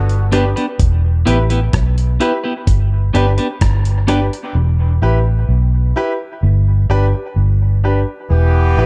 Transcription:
Already playing: fingered electric bass G1, horn section D3 B3 F#4
0.09 closed hi-hat
0.32 clean electric guitar B3 D4 G4 B4, grand piano D4 G4 B4, cross-stick, closed hi-hat
0.56 clean electric guitar B3 D4 G4 B4, closed hi-hat
0.79 fingered electric bass E1, kick, closed hi-hat
1.25 fingered electric bass A1, clean electric guitar B3 E4 G4 B4, grand piano E4 G4 B4, closed hi-hat
1.50 clean electric guitar B3 E4 G4 B4, closed hi-hat
1.73 fingered electric bass B1, kick, cross-stick, closed hi-hat
1.98 closed hi-hat
2.20 clean electric guitar B3 E4 G4 B4, grand piano E4 G4 B4, closed hi-hat
2.44 clean electric guitar B3 E4 G4 B4
2.67 fingered electric bass G1, kick, closed hi-hat
3.13 fingered electric bass G1, clean electric guitar B3 D4 G4 B4, grand piano D4 G4 B4, closed hi-hat
3.38 clean electric guitar B3 D4 G4 B4, grand piano G4 B4, closed hi-hat
3.61 fingered electric bass G1, kick, cross-stick, closed hi-hat
3.85 closed hi-hat
4.07 clean electric guitar B3 D4 G4 B4, grand piano D4 G4 B4, cross-stick, closed hi-hat
4.33 closed hi-hat
4.55 fingered electric bass E1
5.02 fingered electric bass A1, grand piano E4 G4 B4
5.49 fingered electric bass B1
5.96 grand piano E4 G4 B4
6.43 fingered electric bass G1
6.89 fingered electric bass G1, grand piano D4 G4 B4
7.15 grand piano G4 B4
7.36 fingered electric bass G1
7.84 grand piano D4 G4 B4
8.30 fingered electric bass E1, horn section E3 B3 G4
8.77 fingered electric bass A1, grand piano E4 G4 B4

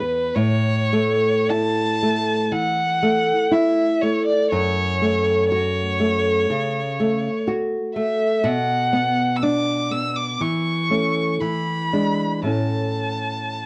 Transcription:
Already playing: nylon-string guitar E2 B3, violin B4
0.00 nylon-string guitar B4
0.35 nylon-string guitar A2, violin C#5
0.93 nylon-string guitar A3
1.50 nylon-string guitar E4, violin A5
2.03 nylon-string guitar A3
2.52 nylon-string guitar E3, violin F#5
3.02 nylon-string guitar A3
3.51 nylon-string guitar E4, violin E5
4.01 nylon-string guitar A3, violin C#5
4.26 violin D5
4.51 nylon-string guitar F#2, violin C#5
5.02 nylon-string guitar A3
5.50 nylon-string guitar F#4, violin C#5
6.00 nylon-string guitar A3
6.50 nylon-string guitar C#3
7.00 nylon-string guitar A3
7.47 nylon-string guitar F#4
7.95 nylon-string guitar A3, violin E5
8.44 nylon-string guitar B2, violin F#5
8.93 nylon-string guitar B3
9.36 violin E6
9.43 nylon-string guitar D4, violin D6
9.91 nylon-string guitar B3, violin E6
10.16 violin D6
10.40 nylon-string guitar E3, violin C#6
10.90 nylon-string guitar A3 C#4
11.41 nylon-string guitar E3, violin B5
11.93 nylon-string guitar G#3 D4
12.42 nylon-string guitar A2 A3 C#4
12.49 violin A5

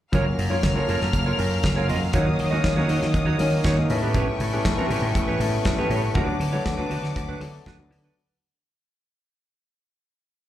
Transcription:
0.12 slap bass F#1, grand piano F#3 A#3 C#4 F4 A#4, clean electric guitar F4 A#4 C#5, string section A#4 F5 F6, kick, closed hi-hat
0.27 muted clean electric guitar stroke
0.38 slap bass F#2, muted clean electric guitar stroke, open hi-hat
0.50 grand piano F#3 A#3 C#4 F4 C#5, clean electric guitar F4 A#4 C#5
0.63 slap bass F#1, kick, snare, closed hi-hat
0.74 grand piano F#3 A#3 C#4 F4 A4, clean electric guitar F4 A#4 C#5
0.82 grand piano A#4
0.89 slap bass F#2, clean electric guitar F4 A#4 C#5, open hi-hat
1.01 slap bass F#2, snare
1.13 slap bass F#1, muted clean electric guitar stroke, kick, closed hi-hat
1.26 clean electric guitar F4 A#4 C#5
1.37 slap bass F#2, grand piano F#3 A#3 C#4 F4 A#4, muted clean electric guitar stroke, open hi-hat
1.52 muted clean electric guitar stroke
1.63 slap bass F#1, muted clean electric guitar stroke, kick, snare, closed hi-hat
1.75 grand piano F#3 A#3 C#4 F4 A#4, clean electric guitar F4 A#4 C#5
1.89 slap bass F#2, clean electric guitar F4 A#4 D#5, open hi-hat
2.01 muted clean electric guitar stroke
2.13 slap bass D#2, grand piano F#3 A#3 C#4 D#4 A#4, clean electric guitar D#4 F#4 C#5, string section C#5 D#6, kick, closed hi-hat
2.27 muted clean electric guitar stroke
2.39 slap bass D#3, muted clean electric guitar stroke, open hi-hat
2.51 grand piano F#3 A#3 C#4 D#4 A#4, clean electric guitar D#4 F#4 D#5
2.64 slap bass D#2, muted clean electric guitar stroke, kick, snare, closed hi-hat
2.76 grand piano F#3 A#3 C#4 D#4 A#4, clean electric guitar D#4 F#4 C#5
2.89 slap bass D#3, clean electric guitar D#4 F#4 C#5, open hi-hat
3.02 slap bass D#3, muted clean electric guitar stroke, snare
3.14 slap bass D#2, muted clean electric guitar stroke, kick, closed hi-hat
3.26 clean electric guitar D#4 F#4 C#5
3.38 slap bass D#3, grand piano F#3 A#3 C#4 D#4 A#4, muted clean electric guitar stroke, open hi-hat
3.52 muted clean electric guitar stroke
3.64 slap bass D#2, clean electric guitar D#4 F#4 C#5, kick, snare, closed hi-hat
3.77 grand piano F#3 A#3 C#4 D#4 A#4, muted clean electric guitar stroke
3.89 slap bass A2, grand piano G3 B3 C#4 E4 A4, string section B4 G5 C#6, muted clean electric guitar stroke, open hi-hat
4.03 clean electric guitar C#4 G4 B4
4.14 clean electric guitar C#4 G4 B4, kick, closed hi-hat
4.28 muted clean electric guitar stroke
4.40 slap bass A2, muted clean electric guitar stroke, open hi-hat
4.52 grand piano G3 B3 C#4 E4 A4, clean electric guitar C#4 G4 B4
4.65 slap bass A1, muted clean electric guitar stroke, kick, snare, closed hi-hat
4.76 grand piano G3 B3 C#4 E4 A4, clean electric guitar C#4 G4 B4
4.90 slap bass A2, clean electric guitar C#4 G4 B4, open hi-hat
5.02 slap bass A2
5.15 slap bass A1, muted clean electric guitar stroke, kick, closed hi-hat
5.28 clean electric guitar C#4 G4 B4
5.40 slap bass A2, grand piano G3 B3 C#4 E4 A4, muted clean electric guitar stroke, open hi-hat
5.54 muted clean electric guitar stroke
5.65 slap bass A1, muted clean electric guitar stroke, kick, snare, closed hi-hat
5.77 grand piano G3 B3 C#4 E4 A4, clean electric guitar C#4 G4 B4
5.90 slap bass A2, clean electric guitar C#4 G4 C#5, open hi-hat
6.14 slap bass D2, grand piano F#3 A3 B3 D4 A4, clean electric guitar D4 F#4 B4, string section F#5 D6, kick, closed hi-hat
6.29 muted clean electric guitar stroke
6.40 slap bass D3, muted clean electric guitar stroke, open hi-hat
6.53 grand piano F#3 A3 B3 D4 A4, clean electric guitar D4 F#4 C#5
6.66 slap bass D2, kick, snare, closed hi-hat
6.78 grand piano F#3 A3 B3 D4 A4, clean electric guitar D4 F#4 B4
6.90 slap bass D3, clean electric guitar D4 F#4 B4, open hi-hat
7.02 slap bass D3, muted clean electric guitar stroke, snare
7.16 slap bass D2, muted clean electric guitar stroke, kick, closed hi-hat
7.28 clean electric guitar D4 F#4 B4
7.40 slap bass D3, grand piano F#3 A3 B3 D4 A4, muted clean electric guitar stroke, open hi-hat
7.54 muted clean electric guitar stroke
7.66 slap bass D2, clean electric guitar D4 F#4 B4, kick, snare, closed hi-hat
7.78 grand piano F#3 A3 B3 D4 A4, muted clean electric guitar stroke
7.90 slap bass D3, muted clean electric guitar stroke, open hi-hat
8.04 clean electric guitar D4 F#4 B4

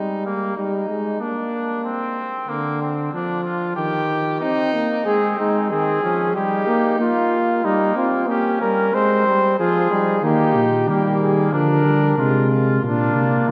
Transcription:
Already playing: trombone G3, trumpet D#4
0.26 trumpet A#3
0.57 trombone G3, trumpet D#4
0.89 trombone G#3
1.21 trombone A#3, trumpet D4
1.85 trumpet C4
2.48 trombone D3, trumpet A#3
2.82 trumpet C4
3.13 trombone F3, trumpet D4
3.44 trumpet F4
3.76 trombone D#3, trumpet G4
4.41 trombone C4, trumpet D#4
4.74 trombone A#3
5.06 trombone G#3, trumpet C4, cornet G#4
5.38 trombone G#3, cornet D#4
5.71 trombone D#3, trumpet C4, cornet G#4
6.03 trombone F3, trumpet C#4
6.35 trombone G3, trumpet D#4, cornet G4
6.67 trombone A#3
6.99 trombone A#3, cornet F4
7.64 trombone G3, trumpet A#3, cornet D#4
7.96 trombone C4, cornet F4
8.28 trombone A#3, trumpet C#4, cornet G4
8.61 trombone G3, cornet A#4
8.94 trombone G#3, trumpet C4, cornet C5
9.27 trombone G3
9.59 trombone F3, trumpet F4, cornet G#4
9.91 trombone G3, trumpet D#4
10.23 tuba D#3, trombone A#3, trumpet D#4, cornet G4
10.55 tuba A#2
10.88 tuba D#3, trombone G3, trumpet A#3, cornet G4
11.21 cornet G#4
11.53 tuba D3, trombone F3, trumpet D4, cornet A#4
11.86 trombone G3
12.17 tuba C3, trombone G#3, trumpet F4
12.51 trumpet F4
12.83 tuba A#2, trombone A#3, cornet D4, trumpet F4
13.15 tuba C3

